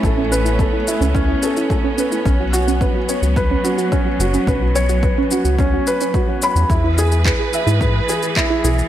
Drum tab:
SH |x-xxx-xxx-xxx-xx|x-xxx-xxx-xxx-xx|x-xxx-xxx-xxx-xx|x-xxx-xxx-xxx-xx|
CP |----------------|----------------|----------------|----x-------x---|
BD |o---o---o---o---|o---o---o---o---|o---o---o---o---|o---o---o---o---|